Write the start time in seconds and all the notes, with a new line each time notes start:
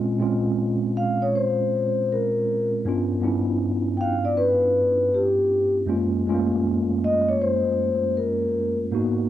Already playing: A#2 G#3 C4 C#4 F4
0.19 A#2 G#3 C4 C#4 F4
0.97 F5
1.22 C#5
1.35 C5
2.12 A#4
2.85 G2 B3 C#4 D4 F4
3.21 G2 B3 C#4 D4 E4
3.97 F5 G5
4.25 D5
4.37 B4
5.14 G4
5.86 F#2 G#3 A#3 C#4 F4
6.26 F#2 G#3 A3 C#4 F4
6.34 A#3
7.04 D#5
7.29 C#5
7.42 C5
8.17 A#4
8.91 G#2 A#3 B3 D#4 F#4